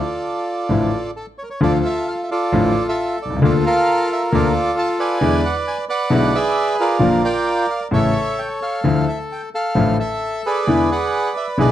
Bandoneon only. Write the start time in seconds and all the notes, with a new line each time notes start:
Already playing: F4 A4 D5
1.16 A4
1.38 C#5
1.43 A#4
1.50 C#5
1.62 F4 A4 D5
1.86 E5
2.08 F5
2.24 E5
2.31 F4 A4 D5
2.89 A4 E5
3.22 D5
3.44 F4 A4 D5
3.66 A4 A#4 F5
4.12 E5
4.34 F4 A4 D5
4.79 A5
4.99 B4 D5 G#5
5.46 F#5
5.68 G#5
5.89 B4 D5 F#5
6.35 G#4 B4 E5
6.80 F4 A#4 D5
7.24 A#4 D5 G5
7.70 F5
7.93 A4 C#5 E5
8.39 G5
8.62 A4 F5
9.09 E5
9.32 G5
9.55 A4 F5
9.99 A4 E5
10.46 G#4 B4 D5
10.92 B4 D5 F#5
11.37 E5
11.60 G#4 B4 D5